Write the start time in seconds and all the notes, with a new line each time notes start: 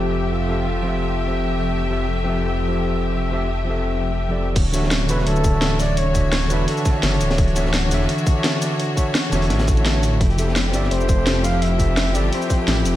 Already playing: F1 F3 A3 C4 G4 A4 E5
0.32 F4
0.49 F3 C4 G4 A4 E5
0.82 F3 C4 G4
0.87 A4 E5
1.27 F3 C4 G4
1.31 A4 E5
1.90 F3 C4 G4 A4 E5
2.24 F3 C4 G4
2.28 A4 E5
2.69 F3 C4 G4
2.73 A4 E5
3.31 F3 C4 G4 A4 E5
3.65 F3 C4 G4
3.70 A4 E5
4.29 F3 C4 G4 A4 D5
4.56 D1 E3 D4 F#4 C#5, kick, closed hi-hat, crash
4.65 closed hi-hat
4.72 D3 D4 F#4 C#5 E5, snare, closed hi-hat, cabasa
4.83 snare
4.91 snare, closed hi-hat
5.06 E1 D3 D4 F#4 B4, snare, closed hi-hat, cabasa
5.11 C#5 E5
5.19 snare
5.26 D1 A4, closed hi-hat
5.36 cabasa
5.44 kick, closed hi-hat, cabasa
5.51 D3 D4 F#4
5.55 C#5 E5
5.61 snare, closed hi-hat
5.80 D5, snare, closed hi-hat, cabasa
5.97 C#5, closed hi-hat
6.13 D3 D4 F#4 C#5 E5, kick, closed hi-hat, cabasa
6.33 snare, closed hi-hat
6.42 closed hi-hat
6.47 E1 D3 D4 F#4 B4, closed hi-hat, cabasa
6.52 C#5 E5
6.68 A4, closed hi-hat
6.77 closed hi-hat, cabasa
6.85 kick, snare, closed hi-hat, cabasa
6.92 D3 D4 F#4
6.96 C#5 E5
7.03 F#1, snare, closed hi-hat
7.14 closed hi-hat
7.21 D1, closed hi-hat, cabasa
7.31 snare, closed hi-hat
7.38 kick, closed hi-hat
7.48 closed hi-hat
7.55 D3 D4 F#4 C#5 E5, snare, closed hi-hat, cabasa
7.65 snare
7.74 snare, closed hi-hat
7.88 E1 D3 D4 F#4, snare, closed hi-hat, cabasa
7.93 C#5 E5
8.01 snare
8.09 closed hi-hat
8.18 cabasa
8.27 kick, closed hi-hat, cabasa
8.33 D3 D4 F#4
8.37 C#5 E5
8.44 snare, closed hi-hat
8.62 snare, closed hi-hat, cabasa
8.80 closed hi-hat
8.96 D3 D4 F#4 C#5 E5, kick, closed hi-hat, cabasa
9.15 snare, closed hi-hat
9.24 closed hi-hat
9.30 E1 D3 D4 F#4, snare, closed hi-hat, cabasa
9.34 C#5 E5
9.42 closed hi-hat
9.50 A1, snare, closed hi-hat
9.60 snare, closed hi-hat, cabasa
9.67 kick, snare, closed hi-hat, cabasa
9.74 D3 D4 F#4, closed hi-hat
9.79 C#5 E5
9.85 snare, closed hi-hat
10.03 closed hi-hat, cabasa
10.13 A1
10.21 F1 F3 A3 E4 G4, kick, closed hi-hat
10.30 closed hi-hat
10.37 F3 C4 G4 A4 E5, snare, closed hi-hat, cabasa
10.48 snare
10.56 snare, closed hi-hat
10.71 G1 F3 C4 G4 D5, snare, closed hi-hat, cabasa
10.75 A4 E5
10.83 snare
10.91 F1 C5, closed hi-hat
11.01 cabasa
11.09 kick, closed hi-hat, cabasa
11.15 F3 C4 G4
11.20 A4 E5
11.26 snare, closed hi-hat
11.44 F5, snare, closed hi-hat, cabasa
11.62 E5, closed hi-hat
11.78 F3 C4 G4 A4 E5, kick, closed hi-hat, cabasa
11.97 snare, closed hi-hat
12.06 closed hi-hat
12.12 G1 F3 C4 G4 D5, closed hi-hat, cabasa
12.16 A4 E5
12.32 C5, closed hi-hat
12.42 closed hi-hat, cabasa
12.50 kick, snare, closed hi-hat, cabasa
12.57 F3 C4 G4
12.61 A4 E5
12.68 A1, snare, closed hi-hat
12.77 closed hi-hat
12.85 F1, closed hi-hat, cabasa